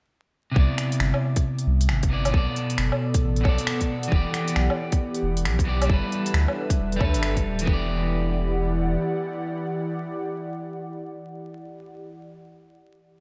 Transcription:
0.51 clean electric guitar C3 B3
0.56 sub bass C2, clean electric guitar E4 D5, kick
0.78 finger snap, closed hi-hat
0.92 closed hi-hat
1.00 sub bass G1, finger snap
1.14 low woodblock
1.36 kick, closed hi-hat
1.59 closed hi-hat
1.67 sub bass C2
1.81 closed hi-hat
1.89 sub bass G1, finger snap
2.03 kick, closed hi-hat
2.09 clean electric guitar C3 B3 E4
2.14 clean electric guitar D5
2.25 closed hi-hat, low woodblock
2.29 clean electric guitar B2 B3
2.34 sub bass B1, analog synth pad B2, clean electric guitar A4 D5, kick
2.45 analog synth pad B3
2.56 analog synth pad D5, closed hi-hat
2.70 analog synth pad A4, closed hi-hat
2.78 sub bass F#1, finger snap
2.92 low woodblock
3.14 analog synth pad F#5, kick, closed hi-hat
3.23 sub bass A1
3.36 closed hi-hat
3.41 clean electric guitar B2 B3
3.45 sub bass B1, clean electric guitar A4, kick, low woodblock
3.49 clean electric guitar D5
3.58 closed hi-hat
3.67 finger snap
3.81 kick, closed hi-hat
4.03 closed hi-hat
4.08 clean electric guitar E3 B3, analog synth pad E3, kick
4.12 sub bass E1, clean electric guitar G4 D5
4.22 analog synth pad G4
4.34 finger snap, closed hi-hat
4.48 closed hi-hat
4.56 sub bass B1, finger snap
4.70 low woodblock
4.92 kick, closed hi-hat
5.15 closed hi-hat
5.23 sub bass E1
5.37 closed hi-hat
5.45 sub bass B1, finger snap
5.59 kick, closed hi-hat
5.65 clean electric guitar E3 B3 G4
5.69 clean electric guitar D5
5.82 clean electric guitar G3, closed hi-hat, low woodblock
5.88 sub bass G1, analog synth pad G3, clean electric guitar E4 A4, kick
5.94 clean electric guitar B4
6.12 analog synth pad B4, closed hi-hat
6.17 analog synth pad A4
6.24 analog synth pad D4 E5, closed hi-hat
6.34 sub bass D2, finger snap
6.48 low woodblock
6.70 kick, closed hi-hat
6.79 sub bass E1
6.92 closed hi-hat
6.96 clean electric guitar G3 E4
7.01 sub bass D2, clean electric guitar A4 B4, kick, low woodblock
7.14 sub bass G1, closed hi-hat
7.23 finger snap
7.37 kick, closed hi-hat
7.45 sub bass D1
7.59 clean electric guitar E3, closed hi-hat
7.65 sub bass E1, analog synth pad E3, clean electric guitar B3, kick
7.69 clean electric guitar G4 D5
7.75 analog synth pad E4
7.83 analog synth pad G4
7.87 analog synth pad D5
7.95 analog synth pad F#5

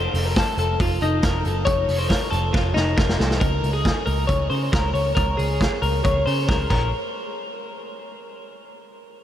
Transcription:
Already playing: clean electric guitar C5
0.14 picked electric bass F1, hi-hat pedal, open hi-hat
0.25 clean electric guitar A#4
0.36 clean electric guitar A4, kick, snare, hi-hat pedal, open hi-hat
0.58 picked electric bass F1, clean electric guitar A4, hi-hat pedal, open hi-hat
0.79 picked electric bass F1, clean electric guitar F4, kick, hi-hat pedal, open hi-hat
1.00 picked electric bass F1, clean electric guitar D#4, hi-hat pedal, open hi-hat
1.22 picked electric bass F1, clean electric guitar A#4, kick, snare, hi-hat pedal, open hi-hat
1.45 picked electric bass F#1, clean electric guitar A4, hi-hat pedal, open hi-hat
1.65 picked electric bass F1, clean electric guitar C#5, kick, hi-hat pedal, open hi-hat
1.88 picked electric bass F1, hi-hat pedal, open hi-hat
1.99 clean electric guitar C5
2.09 clean electric guitar A#4, kick, snare, hi-hat pedal, open hi-hat
2.31 picked electric bass F1, clean electric guitar A4, hi-hat pedal, open hi-hat
2.53 picked electric bass F1, clean electric guitar F4, kick, snare
2.74 picked electric bass F1, clean electric guitar D#4, snare
2.97 picked electric bass F1, clean electric guitar A#4, kick, snare
3.09 snare
3.18 picked electric bass C2, clean electric guitar A4, snare
3.31 snare
3.40 picked electric bass C#2, clean electric guitar A#4, kick, closed hi-hat
3.64 picked electric bass C#2, open hi-hat
3.73 clean electric guitar G#4
3.85 kick, snare, closed hi-hat
4.06 picked electric bass C#2, clean electric guitar A#4, open hi-hat
4.27 picked electric bass C#2, clean electric guitar C#5, kick, closed hi-hat
4.50 picked electric bass C#3, clean electric guitar C5, open hi-hat
4.72 picked electric bass C#2, clean electric guitar A#4, kick, snare, closed hi-hat
4.94 picked electric bass C#2, clean electric guitar C#5, open hi-hat
5.15 picked electric bass C#2, clean electric guitar A#4, kick, closed hi-hat
5.37 picked electric bass C#2, clean electric guitar G#4, open hi-hat
5.61 kick, snare, closed hi-hat
5.82 picked electric bass C#2, clean electric guitar A#4, open hi-hat
6.04 picked electric bass C#2, clean electric guitar C#5, kick, closed hi-hat
6.26 picked electric bass C#3, clean electric guitar C5, open hi-hat
6.48 picked electric bass C#2, clean electric guitar A#4, kick, snare
6.70 picked electric bass A#1, clean electric guitar A#4, kick, crash

